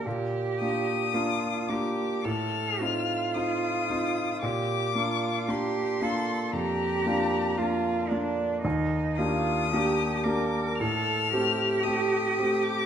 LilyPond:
<<
  \new Staff \with { instrumentName = "Violin" } { \time 4/4 \key bes \major \tempo 4 = 56 r8 ees'''4 d'''8 f'''4 ees'''4 | d'''4 c'''4 bes''4. r8 | r8 ees'''4 d'''8 f'''4 ees'''8. d'''16 | }
  \new Staff \with { instrumentName = "Cello" } { \time 4/4 \key bes \major g'4 f'8 g'8 a'8 f'4. | g'8 f'8 g'8 a'8 g'4 f'8 d'8 | ees'8 f'8 g'8 bes'8 a'8 g'4. | }
  \new Staff \with { instrumentName = "Grand piano" } { \time 4/4 \key bes \major bes,8 <bes d' f'>8 <bes d' f'>8 <bes d' f'>8 a,8 <c' ees' f'>8 <c' ees' f'>8 <c' ees' f'>8 | bes,8 <bes d' f'>8 <bes d' f'>8 <bes d' f'>8 f,8 <bes d' f'>8 <bes d' f'>8 <bes d' f'>8 | ees,8 <bes d' g'>8 <bes d' g'>8 <bes d' g'>8 a,8 <a c' g'>8 <a c' g'>8 <a c' g'>8 | }
>>